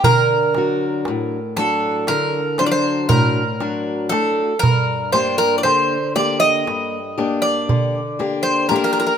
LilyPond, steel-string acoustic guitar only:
\new Staff \with { instrumentName = "Steel-string acoustic guitar" } { \time 9/8 \tempo 4. = 39 d8 <fis d' fis'>8 a,8 <fis d' fis'>8 d8 <fis d' fis'>8 a,8 <fis d' fis'>8 <a d' fis'>8 | g,8 <bes d' g'>8 d8 <bes g'>8 g,8 <bes d' g'>8 d8 <bes d' g'>8 <bes d' g'>8 | }